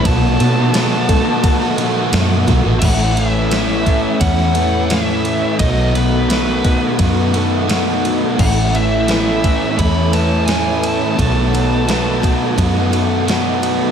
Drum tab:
CC |----------------|x---------------|----------------|x---------------|
RD |x-x-x-x-x-x-x-x-|x-x-x-x-x-x-x-x-|x-x-x-x-x-x-x-x-|--x-x-x-x-x-x-x-|
SD |----o-------o-o-|----o----o--o---|----o-------o---|----o-------o---|
BD |o-----o-o-----o-|o-----o-o-------|o-----o-o-------|o-----o-o-------|

CC |----------------|
RD |x-x-x-x-x-x-x-x-|
SD |----o----o--o---|
BD |o-----o-o-------|